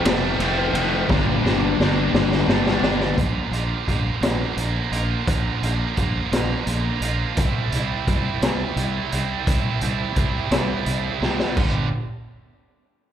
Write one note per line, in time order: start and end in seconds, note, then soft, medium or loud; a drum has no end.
0.00 0.38 C3 loud
0.00 0.40 F3 medium
0.00 0.39 A3 medium
0.00 0.40 C4 loud
0.05 0.34 F1 loud
0.05 0.76 F2 medium
0.05 0.38 C3 medium
0.05 0.40 F3 medium
0.05 0.40 A3 medium
0.05 0.41 C4 loud
0.05 snare loud
0.05 ride loud
0.39 0.69 F1 medium
0.39 1.06 C3 medium
0.39 0.76 F3 medium
0.39 0.74 A3 medium
0.39 0.72 C4 medium
0.39 ride medium
0.73 1.03 F1 loud
0.73 1.09 F3 medium
0.73 1.07 A3 medium
0.73 1.06 C4 medium
0.73 ride medium
1.08 1.39 G1 loud
1.08 1.78 G2 loud
1.08 1.78 D3 loud
1.08 1.45 G3 loud
1.08 1.44 A#3 loud
1.08 1.42 D4 loud
1.08 kick loud
1.08 snare medium
1.43 1.74 G1 medium
1.43 2.14 G2 medium
1.43 1.77 D3 medium
1.43 2.14 G3 medium
1.43 2.13 A#3 medium
1.43 2.13 D4 medium
1.43 snare medium
1.78 2.09 G1 medium
1.78 2.45 D3 medium
1.78 2.46 G3 medium
1.78 2.47 A#3 medium
1.78 2.47 D4 medium
1.78 snare medium
2.14 2.43 G1 loud
2.14 2.85 G2 medium
2.14 2.46 D3 medium
2.14 2.48 G3 medium
2.14 2.48 A#3 medium
2.14 2.49 D4 loud
2.14 snare loud
2.31 snare medium
2.48 2.78 G1 loud
2.48 3.15 D3 medium
2.48 2.84 G3 medium
2.48 2.83 A#3 medium
2.48 2.82 D4 medium
2.48 snare loud
2.66 snare medium
2.82 3.12 G1 medium
2.82 3.17 G3 medium
2.82 3.16 A#3 medium
2.82 3.16 D4 medium
2.82 snare loud
3.01 snare medium
3.16 3.39 A#1 medium
3.16 4.24 A#2 medium
3.16 3.85 D3 loud
3.16 3.54 F3 loud
3.16 3.53 A#3 medium
3.16 3.51 F4 medium
3.16 kick loud
3.16 closed hi-hat medium
3.51 3.73 A#1 medium
3.51 3.87 F3 medium
3.51 3.88 A#3 medium
3.51 3.89 F4 medium
3.51 closed hi-hat medium
3.87 4.09 A#1 medium
3.87 4.23 D3 medium
3.87 4.22 F3 medium
3.87 4.21 A#3 medium
3.87 4.21 F4 medium
3.87 kick medium
3.87 closed hi-hat medium
4.21 4.43 A#1 medium
4.21 5.25 A#2 medium
4.21 5.26 D3 medium
4.21 4.92 F3 medium
4.21 4.91 A#3 medium
4.21 4.90 F4 medium
4.21 snare loud
4.21 closed hi-hat medium
4.57 4.79 A#1 medium
4.57 closed hi-hat medium
4.91 5.14 A#1 medium
4.91 5.27 F3 medium
4.91 5.27 A#3 medium
4.91 5.28 F4 medium
4.91 closed hi-hat medium
5.27 5.49 A#1 medium
5.27 5.97 A#2 loud
5.27 5.96 D3 medium
5.27 5.64 F3 loud
5.27 5.63 A#3 loud
5.27 5.61 F4 loud
5.27 kick loud
5.27 closed hi-hat loud
5.62 5.84 A#1 medium
5.62 5.97 F3 medium
5.62 5.98 A#3 medium
5.62 5.99 F4 medium
5.62 closed hi-hat medium
5.97 6.19 A#1 medium
5.97 6.33 D3 medium
5.97 6.33 F3 medium
5.97 6.32 A#3 medium
5.97 6.31 F4 medium
5.97 kick medium
5.97 closed hi-hat medium
6.32 6.54 A#1 loud
6.32 7.37 A#2 medium
6.32 7.36 D3 medium
6.32 7.04 F3 medium
6.32 7.03 A#3 medium
6.32 7.01 F4 medium
6.32 snare loud
6.32 closed hi-hat loud
6.67 6.89 A#1 medium
6.67 closed hi-hat medium
7.01 7.23 A#1 loud
7.01 7.36 A#3 medium
7.01 7.35 F4 medium
7.01 closed hi-hat medium
7.06 7.37 F3 medium
7.37 7.59 C2 loud
7.37 8.07 C3 loud
7.37 7.76 G3 medium
7.37 7.74 C4 loud
7.37 7.73 E4 loud
7.37 kick loud
7.37 closed hi-hat loud
7.72 7.94 C2 medium
7.72 8.09 C4 medium
7.72 8.10 E4 medium
7.72 closed hi-hat medium
7.76 8.08 G3 medium
8.07 8.29 C2 medium
8.07 8.43 C3 medium
8.07 8.43 G3 medium
8.07 8.42 C4 medium
8.07 8.41 E4 medium
8.07 kick medium
8.07 closed hi-hat medium
8.42 8.64 C2 medium
8.42 9.45 C3 medium
8.42 9.14 G3 medium
8.42 9.12 C4 medium
8.42 9.10 E4 medium
8.42 snare loud
8.42 closed hi-hat medium
8.76 8.99 C2 loud
8.76 closed hi-hat medium
9.11 9.35 C2 medium
9.11 9.46 G3 medium
9.11 9.47 C4 medium
9.11 9.48 E4 medium
9.11 closed hi-hat medium
9.46 9.69 C2 loud
9.46 10.15 C3 loud
9.46 9.82 G3 loud
9.46 9.81 C4 loud
9.46 9.79 E4 loud
9.46 kick loud
9.46 closed hi-hat loud
9.80 10.04 C2 medium
9.80 10.16 G3 medium
9.80 10.17 C4 medium
9.80 10.18 E4 medium
9.80 closed hi-hat medium
10.16 10.39 C2 medium
10.16 10.52 C3 medium
10.16 10.52 G3 medium
10.16 10.50 C4 medium
10.16 10.49 E4 loud
10.16 kick medium
10.16 closed hi-hat medium
10.50 10.73 C2 loud
10.50 11.56 C3 medium
10.50 11.22 G3 medium
10.50 11.21 C4 medium
10.50 11.19 E4 medium
10.50 snare loud
10.50 closed hi-hat medium
10.86 11.09 C2 loud
10.86 closed hi-hat medium
11.21 11.43 C2 medium
11.21 11.56 G3 medium
11.21 11.55 C4 medium
11.21 11.55 E4 medium
11.21 snare medium
11.39 snare medium
11.57 11.90 G1 loud
11.57 11.85 G2 medium
11.57 11.86 D3 medium
11.57 11.86 G3 loud
11.57 kick loud
11.57 crash medium